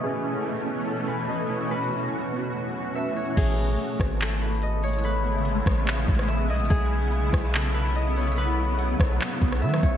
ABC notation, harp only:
X:1
M:4/4
L:1/8
Q:1/4=144
K:Alyd
V:1 name="Harp"
G2 z2 A B d c | B2 z4 e c | G2 z2 A B d c | B2 z4 e d |
G2 z2 A B d c | B2 z4 e c |]